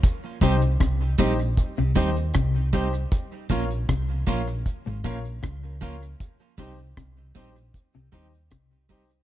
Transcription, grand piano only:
\new Staff \with { instrumentName = "Grand piano" } { \time 4/4 \key c \phrygian \tempo 4 = 78 r8 <ees' g' c''>16 r8. <ees' g' c''>16 r8. <ees' g' c''>16 r8. <ees' g' c''>16 r16 | r8 <f' bes' des''>16 r8. <f' bes' des''>16 r8. <f' bes' des''>16 r8 <bes' des''>16 <f' bes' des''>16 r16 | r8 <ees' g' c''>16 r8. <ees' g' c''>16 r8. <ees' g' c''>16 r8. <ees' g' c''>16 r16 | }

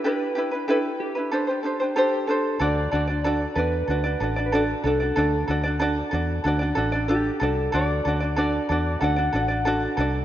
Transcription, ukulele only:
\new Staff \with { instrumentName = "Ukulele" } { \time 4/4 \key d \mixolydian \tempo 4 = 94 <d' e' g' b'>8 <d' e' g' b'>16 <d' e' b'>16 <d' e' g' b'>8. <d' e' b'>16 <d' g' a' c''>16 <d' g' c''>16 <d' g' a' c''>16 <d' g' c''>16 <d' g' a' c''>8 <d' g' a' c''>8 | <d' fis' a' d''>8 <d' fis' a' d''>16 <d' fis' d''>16 <d' fis' a' d''>8 <d' fis' a' d''>8 <d' fis' a' d''>16 <d' fis' d''>16 <d' fis' a' d''>16 <d' fis' d''>16 <d' fis' a' d''>8 <d' fis' a' d''>16 <d' fis' d''>16 | <d' fis' a' d''>8 <d' fis' a' d''>16 <d' fis' d''>16 <d' fis' a' d''>8 <d' fis' a' d''>8 <d' fis' a' d''>16 <d' fis' d''>16 <d' fis' a' d''>16 <d' fis' d''>16 <d' a' d''>8 <d' fis' a' d''>8 | <d' fis' a' d''>8 <d' fis' a' d''>16 <d' fis' d''>16 <d' fis' a' d''>8 <d' fis' a' d''>8 <d' fis' a' d''>16 <d' fis' d''>16 <d' fis' a' d''>16 <d' fis' d''>16 <d' fis' a' d''>8 <d' fis' a' d''>8 | }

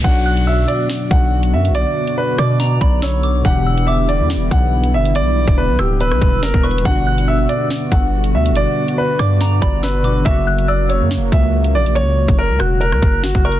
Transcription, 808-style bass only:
\new Staff \with { instrumentName = "808-style bass" } { \clef bass \time 4/4 \key b \minor \tempo 4 = 141 b,,4. r4 b,,4 fis,16. b,,32~ | b,,16 r4 r16 b,4 b,,4. | e,,4.~ e,,16 e,16. e,,16. b,,4 g,,8~ | g,,32 b,,8~ b,,32 e,,8 b,,16 d,,8. b,,16 e,,8 fis,,16 e,,8. |
g,,4. r4 g,,4 d,16. g,,32~ | g,,16 r4 r16 g,4 g,,4. | fis,,4.~ fis,,16 fis,16. fis,,16. cis,4 ais,,8~ | ais,,32 cis,8~ cis,32 fis,,8 cis,16 e,,8. cis,16 fis,,8 g,,16 fis,,8. | }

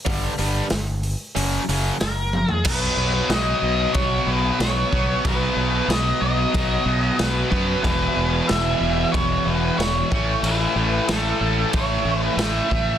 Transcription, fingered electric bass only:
\new Staff \with { instrumentName = "Fingered electric bass" } { \clef bass \time 4/4 \key fis \minor \tempo 4 = 92 g,,8 g,,8 g,,4 fis,,8 fis,,8 fis,,4 | \key b \mixolydian b,,8 b,,8 b,,8 b,,8 b,,8 b,,8 b,,8 b,,8 | b,,8 b,,8 b,,8 b,,8 b,,8 b,,8 b,,8 fis,8 | e,,8 e,,8 e,,8 e,,8 e,,8 e,,8 e,,8 a,,8 |
a,,8 a,,8 a,,8 a,,8 a,,8 a,,8 a,,8 a,,8 | }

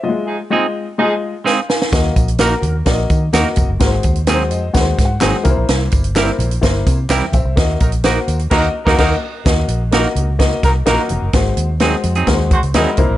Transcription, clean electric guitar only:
\new Staff \with { instrumentName = "Clean electric guitar" } { \time 4/4 \key ees \dorian \tempo 4 = 128 r4 <aes c' ees' aes'>16 r4. r16 <aes c' ees' aes'>16 r8. | r4 <bes ees' ges' bes'>16 r4. r16 <bes ees' ges' bes'>16 r8. | r4 <ges c' ees' aes'>16 r4. r16 <ges c' ees' aes'>16 r8. | r4 <g c' e' bes'>16 r4. r16 <g c' e' bes'>16 r8. |
r4 <bes ees' ges' bes'>16 r8. <bes ees' ges' bes'>8 r16 <bes ees' ges' bes'>16 <bes ees' ges' bes'>8 r8 | r4 <bes ees' ges' bes'>16 r4. r16 <bes ees' ges' bes'>16 r8. | r4 <ges c' ees' aes'>16 r8 <ges c' ees' aes'>16 r4 <ges c' ees' aes'>16 r8. | }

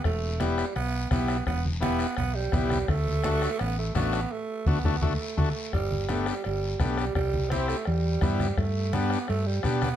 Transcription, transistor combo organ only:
\new Staff \with { instrumentName = "Transistor combo organ" } { \time 4/4 \key g \major \tempo 4 = 169 r4 <b e' g'>8 r4. <b e' g'>8 r8 | r4 <b e' g'>8 r4. <b e' g'>8 r8 | r4 <a d' fis'>8 r4. <a d' fis'>8 r8 | r4 <a d' fis'>8 <a d' fis'>8 <a d' fis'>8 r8 <a d' fis'>8 r8 |
r4 <b d' g'>8 r4. <b d' g'>8 r8 | r4 <c' e' g'>8 r4. <b e' g'>8 r8 | r4 <b d' g'>8 r4. <b d' g'>8 r8 | }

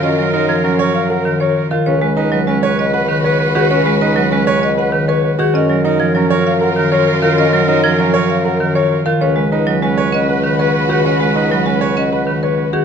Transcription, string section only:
\new Staff \with { instrumentName = "String section" } { \time 6/4 \key fis \major \tempo 4 = 196 <eis' ais'>1~ <eis' ais'>4. r8 | <fis' b'>1.~ | <fis' b'>1~ <fis' b'>4. r8 | <eis' ais'>1.~ |
<eis' ais'>1~ <eis' ais'>4. r8 | <fis' b'>1.~ | <fis' b'>1~ <fis' b'>4. r8 | }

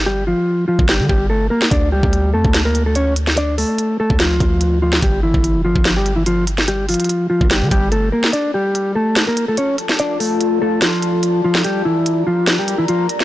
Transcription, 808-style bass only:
\new Staff \with { instrumentName = "808-style bass" } { \clef bass \time 4/4 \key d \minor \tempo 4 = 145 g,,8. r4 g,,8 d16 g,,4 r8 | d,8 cis,16 d,8. f,16 d,2~ d,16~ | d,8. r4 d,8 cis,16 d,4. | g,,8. g,,8 f,,16 g,,16 g,,2~ g,,16~ |
g,,8. r4 g,,8 d16 g,,4 r8 | r1 | r1 | r1 | }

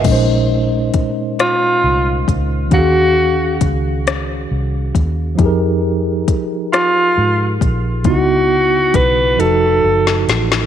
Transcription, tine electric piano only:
\new Staff \with { instrumentName = "Tine electric piano" } { \time 6/8 \key bes \minor \tempo 4. = 45 << { <bes' ees''>16 r2 r8. | r2. | r2. | r2. | } \\ { <bes, aes des' ees' c''>2. | <ees des' ges' aes' f''>2. | <f ees' g' aes' bes'>2. | <des ces' ees' fes' ges'>4. <f ees' ges' a'>4. | } >> }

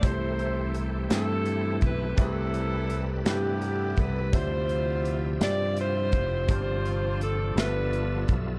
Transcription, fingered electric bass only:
\new Staff \with { instrumentName = "Fingered electric bass" } { \clef bass \time 6/8 \key c \major \tempo 4. = 56 c,4. g,4 b,,8 | c,4. g,4 c,8 | d,4. g,4 f,,8 | g,,4. g,,4 b,,8 | }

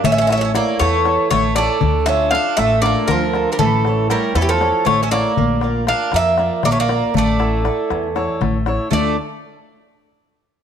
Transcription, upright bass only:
\new Staff \with { instrumentName = "Upright bass" } { \clef bass \time 7/8 \key d \minor \tempo 4 = 118 a,,4. e,4 a,,4 | d,4. a,,4 d,4 | a,,4. e,4 a,,4 | bes,,4. f,4 bes,,4 |
a,,4. e,4 a,,4 | d,8 r2. | }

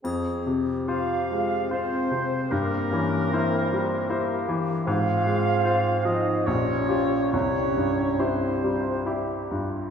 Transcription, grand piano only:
\new Staff \with { instrumentName = "Grand piano" } { \time 3/4 \key f \minor \tempo 4 = 73 f,8 c8 <f' c''>8 aes8 <f' c''>8 c8 | g,8 e8 <e' c''>8 g8 <e' c''>8 e8 | aes,8 aes8 <f' c''>8 f8 bes,,8 <f' g'>8 | c,8 g,8 <e' g'>8 g8 <e' g'>8 g,8 | }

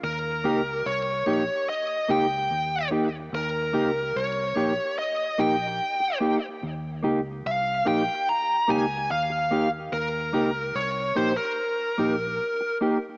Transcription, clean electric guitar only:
\new Staff \with { instrumentName = "Clean electric guitar" } { \time 4/4 \key ees \mixolydian \tempo 4 = 73 r8 <bes ees' g'>8 r8 <bes ees' g'>8 r8 <bes ees' g'>8 r8 <bes ees' g'>8 | r8 <bes ees' g'>8 r8 <bes ees' g'>8 r8 <bes ees' g'>8 r8 <bes ees' g'>8 | r8 <bes ees' g'>8 r8 <bes ees' g'>8 r8 <bes ees' g'>8 r8 <bes ees' g'>8 | r8 <bes ees' g'>8 r8 <bes ees' g'>8 r8 <bes ees' g'>8 r8 <bes ees' g'>8 | }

